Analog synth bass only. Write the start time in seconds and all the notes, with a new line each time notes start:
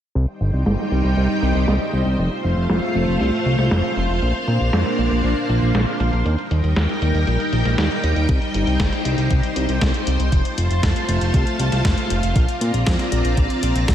0.15 C2
0.41 G1
0.54 C2
0.66 G1
0.92 C2
1.04 C2
1.17 C2
1.42 C2
1.55 C2
1.68 C2
1.93 C2
2.06 C2
2.19 F1
2.44 F1
2.57 F1
2.70 F1
2.95 F1
3.08 F1
3.20 C2
3.46 C2
3.59 C2
3.71 F1
3.97 F1
4.10 F1
4.22 A#1
4.48 A#2
4.60 A#1
4.73 F2
4.99 A#1
5.11 A#1
5.24 A#1
5.49 A#1
5.62 A#1
5.75 A#1
6.00 A#1
6.13 A#1
6.25 D#2
6.51 D#2
6.64 D#2
6.76 D#2
7.02 D#2
7.14 D#2
7.27 A#1
7.53 A#1
7.65 A#1
7.78 D#2
8.04 D#2
8.16 D#2
8.29 C2
8.54 G1
8.67 C2
8.80 G1
9.05 C2
9.18 C2
9.31 C2
9.56 C2
9.69 C2
9.81 C2
10.07 C2
10.20 C2
10.32 F1
10.58 F1
10.71 F1
10.83 F1
11.09 F1
11.21 F1
11.34 C2
11.59 C2
11.72 C2
11.85 F1
12.10 F1
12.23 F1
12.36 A#1
12.61 A#2
12.74 A#1
12.87 F2
13.12 A#1
13.25 A#1
13.37 A#1
13.63 A#1
13.76 A#1
13.88 A#1